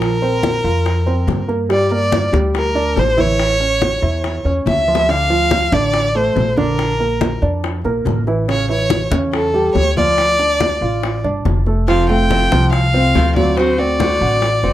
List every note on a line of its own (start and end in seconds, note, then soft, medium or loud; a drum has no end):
0.00 0.59 A#1 medium
0.00 0.15 F3 medium
0.00 0.15 F4 medium
0.00 1.46 A#4 medium
0.00 high bongo medium
0.00 high conga soft
0.22 0.57 C4 medium
0.22 0.57 C5 medium
0.22 high bongo soft
0.22 high conga soft
0.43 high bongo medium
0.43 high conga medium
0.64 1.24 F2 medium
0.64 0.99 F4 medium
0.64 0.99 F5 medium
0.64 high conga soft
0.86 high bongo medium
0.86 high conga soft
1.06 1.41 C4 medium
1.06 1.41 C5 medium
1.06 high bongo soft
1.06 high conga soft
1.27 2.27 G2 medium
1.27 high bongo soft
1.27 low bongo medium
1.27 high conga medium
1.48 1.66 A#3 medium
1.48 1.66 A#4 medium
1.48 high bongo soft
1.48 high conga soft
1.69 1.87 G3 medium
1.69 1.87 G4 medium
1.69 1.91 D5 medium
1.69 high bongo medium
1.69 high conga soft
1.91 2.26 A#3 medium
1.91 2.26 A#4 medium
1.91 2.31 D5 medium
1.91 high bongo soft
1.91 high conga soft
2.12 high bongo medium
2.12 high conga medium
2.33 2.92 D2 medium
2.33 2.68 G3 medium
2.33 2.68 G4 medium
2.33 high conga medium
2.55 3.00 A#4 medium
2.55 high bongo medium
2.55 high conga soft
2.75 3.10 D4 medium
2.75 3.10 D5 medium
2.75 high bongo soft
2.75 high conga soft
2.96 3.96 A1 medium
2.96 3.21 C5 medium
2.96 high bongo soft
2.96 low bongo medium
2.96 high conga soft
3.17 3.52 E3 medium
3.17 3.52 E4 medium
3.17 4.46 C#5 loud
3.17 high bongo soft
3.17 high conga medium
3.39 high bongo medium
3.39 high conga soft
3.60 3.95 C#4 medium
3.60 3.95 C#5 medium
3.60 high bongo soft
3.60 high conga soft
3.82 high bongo medium
3.82 high conga medium
4.02 4.42 E2 medium
4.02 4.37 E4 medium
4.02 4.37 E5 medium
4.02 high conga soft
4.24 high bongo medium
4.24 high conga soft
4.44 4.65 E2 medium
4.44 4.80 C#4 medium
4.44 4.80 C#5 medium
4.44 high bongo soft
4.44 high conga soft
4.66 5.66 D2 medium
4.66 5.11 E5 loud
4.66 high bongo medium
4.66 high conga medium
4.88 5.05 F3 medium
4.88 5.05 F4 medium
4.88 high conga soft
4.95 low bongo medium
5.09 5.26 D3 medium
5.09 5.26 D4 medium
5.09 5.75 F5 loud
5.09 high bongo medium
5.09 high conga soft
5.30 5.65 F3 medium
5.30 5.65 F4 medium
5.30 high bongo soft
5.30 high conga soft
5.51 high bongo medium
5.51 high conga medium
5.72 6.32 A1 medium
5.72 6.07 D3 medium
5.72 6.07 D4 medium
5.72 6.18 D5 loud
5.72 high conga medium
5.93 high bongo medium
5.93 high conga soft
6.15 6.50 A3 medium
6.15 6.50 A4 medium
6.15 6.58 C5 medium
6.15 high bongo soft
6.15 high conga soft
6.36 7.36 A#1 medium
6.36 high bongo soft
6.36 low bongo medium
6.36 high conga soft
6.57 6.92 D3 medium
6.57 6.92 D4 medium
6.57 7.39 A#4 medium
6.57 high bongo soft
6.57 high conga medium
6.79 high bongo medium
6.79 high conga soft
6.99 7.34 A#3 medium
6.99 7.35 A#4 medium
6.99 high bongo soft
6.99 high conga soft
7.21 high bongo medium
7.21 high conga medium
7.42 7.82 F2 medium
7.42 7.77 D4 medium
7.42 7.77 D5 medium
7.42 high conga soft
7.64 high bongo medium
7.64 high conga soft
7.84 8.04 A#1 medium
7.84 8.20 A#3 medium
7.84 8.20 A#4 medium
7.84 high bongo soft
7.84 high conga soft
8.05 9.06 A1 medium
8.05 high bongo soft
8.05 low bongo medium
8.05 high conga medium
8.27 8.45 E3 medium
8.27 8.45 E4 medium
8.27 high bongo soft
8.27 high conga soft
8.48 8.66 C#3 medium
8.48 8.66 C#4 medium
8.48 8.69 C#5 medium
8.48 high bongo medium
8.48 high conga soft
8.69 9.04 E3 medium
8.69 9.04 E4 medium
8.69 9.10 C#5 medium
8.69 high bongo soft
8.69 high conga soft
8.90 high bongo medium
8.90 high conga loud
9.11 9.71 E2 medium
9.11 9.46 C#3 medium
9.11 9.47 C#4 medium
9.11 high conga medium
9.33 9.73 A4 medium
9.33 high bongo medium
9.33 high conga soft
9.54 9.89 G3 medium
9.54 9.89 G4 medium
9.54 high bongo soft
9.54 high conga soft
9.75 10.75 D2 medium
9.75 9.95 C#5 loud
9.75 high bongo soft
9.75 low bongo medium
9.75 high conga soft
9.97 10.32 F3 medium
9.97 10.32 F4 medium
9.97 11.21 D5 loud
9.97 high bongo soft
9.97 high conga medium
10.18 high bongo medium
10.18 high conga soft
10.39 10.74 D4 medium
10.39 10.74 D5 medium
10.39 high bongo soft
10.39 high conga soft
10.60 high bongo medium
10.60 high conga medium
10.81 11.21 A1 medium
10.81 11.17 F4 medium
10.81 11.17 F5 medium
10.81 high conga soft
11.03 high bongo medium
11.03 high conga soft
11.24 11.44 G1 medium
11.24 11.59 D4 medium
11.24 11.59 D5 medium
11.24 high bongo soft
11.24 high conga soft
11.45 12.45 F1 medium
11.45 high bongo soft
11.45 low bongo medium
11.45 high conga medium
11.66 11.84 A3 medium
11.66 11.84 A4 medium
11.66 high bongo soft
11.66 high conga soft
11.87 12.08 C3 medium
11.87 12.05 F3 medium
11.87 12.08 F3 medium
11.87 12.09 A3 medium
11.87 12.09 C4 medium
11.87 12.05 F4 medium
11.87 12.07 F4 medium
11.87 12.08 F5 medium
11.87 high bongo medium
11.87 high conga soft
12.09 12.44 A3 medium
12.09 12.30 A3 soft
12.09 12.30 C4 soft
12.09 12.29 F4 soft
12.09 12.44 A4 medium
12.09 12.69 G5 medium
12.09 high bongo soft
12.09 high conga soft
12.29 12.71 C3 medium
12.29 12.72 F3 medium
12.29 12.72 A3 medium
12.29 12.72 C4 medium
12.29 12.72 F4 medium
12.29 high bongo medium
12.29 high conga medium
12.52 13.11 C2 medium
12.52 12.86 F3 medium
12.52 12.87 F4 medium
12.52 high conga medium
12.72 13.32 F5 medium
12.72 muted nylon-string guitar stroke medium
12.72 high bongo medium
12.72 high conga soft
12.94 13.15 A3 soft
12.94 13.29 C4 medium
12.94 13.15 C4 soft
12.94 13.14 F4 soft
12.94 13.29 C5 medium
12.94 high bongo soft
12.94 high conga soft
13.15 14.15 D2 medium
13.15 13.35 C3 medium
13.15 13.36 F3 medium
13.15 13.36 A3 medium
13.15 13.36 C4 medium
13.15 13.35 F4 medium
13.15 high bongo soft
13.15 low bongo medium
13.15 high conga soft
13.36 13.71 F#3 medium
13.36 13.57 A3 soft
13.36 13.57 C4 soft
13.36 13.57 F4 soft
13.36 13.71 F#4 medium
13.36 13.58 D5 medium
13.36 high bongo soft
13.36 high conga medium
13.57 13.78 D3 medium
13.57 13.78 A3 medium
13.57 13.79 C4 medium
13.57 13.77 F#4 medium
13.57 13.80 C5 medium
13.57 high bongo medium
13.57 high conga soft
13.78 13.99 A3 soft
13.78 14.14 C4 medium
13.78 14.00 C4 soft
13.78 13.99 F#4 medium
13.78 14.14 C5 medium
13.78 14.73 D5 medium
13.78 high bongo soft
13.78 high conga soft
14.00 14.41 D3 medium
14.00 14.42 A3 medium
14.00 14.42 C4 medium
14.00 14.43 F#4 medium
14.00 high bongo medium
14.00 high conga medium
14.21 14.61 A1 medium
14.21 14.56 F#4 medium
14.21 14.56 F#5 medium
14.21 high conga soft
14.42 muted nylon-string guitar stroke medium
14.42 high bongo medium
14.42 high conga soft
14.63 14.73 F#1 medium
14.63 14.73 A3 soft
14.63 14.73 C4 medium
14.63 14.73 C4 soft
14.63 14.73 F#4 soft
14.63 14.73 C5 medium
14.63 high bongo soft
14.63 high conga soft